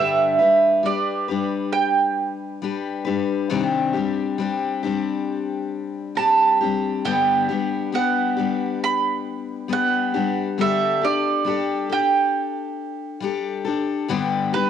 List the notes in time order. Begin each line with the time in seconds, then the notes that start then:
Already playing: G2 D3 G3 D4 G4 B4 E5
0.39 G3 D4 G4 B4
0.83 G3 D4 G4 B4 D5
1.28 G3 D4 G4 B4
1.73 G5
2.62 G3 D4 G4 B4
3.05 G3 D4 G4 B4
3.50 C3 D#3 G3 C4 D4 G4
3.93 G3 C4 D4 G4
4.38 G3 C4 D4 G4
4.83 G3 C4 D4 G4
6.15 G3 C4 D4 A5
6.19 G4
6.61 G3 C4 D4 G4
7.05 G2 D3 G3 B3 D4 G4 G5
7.49 G3 B3 D4 G4
7.92 G3 B3 D4 G4 F#5
8.37 G3 B3 D4 G4
8.84 B5
9.68 G3 B3 D4 G4
9.73 F#5
10.14 G3 B3 D4 G4
10.58 D3 G3 D4 G4 A4 E5
11.01 D4 G4 A4 D5
11.45 G3 D4 G4 A4
11.89 D4 G4 A4 G5
13.20 G3 D4 G4 A4
13.65 D4 G4 A4
14.08 G2 D3 G3 B3 D4 G4
14.53 G3 B3 D4 G4 B4